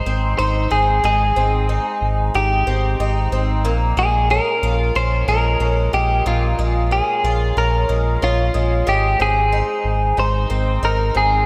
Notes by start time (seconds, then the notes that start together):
Already playing: G#3 D#4 C5
0.06 G#1 C4
0.38 G#1 D#4 C5
0.71 G#1 C4 G#4
1.03 G#1 G#3 G#4
1.36 G#1 C4
1.69 D#4
2.01 G#1
2.34 G#1 D#4 G4
2.66 G#1 C4
2.99 G#1 D#4
3.32 G#1 C4
3.64 A#1 A#2
3.97 A#1 G#3 G#4
4.30 C#4 A#4
4.62 A#1 F4
4.95 A#1 C#4 C5
5.27 A#1 G#3 A#4
5.60 A#1 C#4
5.93 A#1 G#3 G4
6.26 A#1 A#2 F4
6.58 A#1 G#3
6.91 C#4 G#4
7.24 A#1 F4
7.56 A#1 C#4 A#4
7.89 A#1 G#3
8.22 A#1 C#4 F4
8.54 A#1 G#3
8.87 G#1 G#3 G4
9.20 G#1 C4 G#4
9.52 D#4
9.84 G#1
10.17 G#1 D#4 C5
10.50 G#1 C4
10.82 G#1 D#4 A#4
11.15 G#1 C4 G#4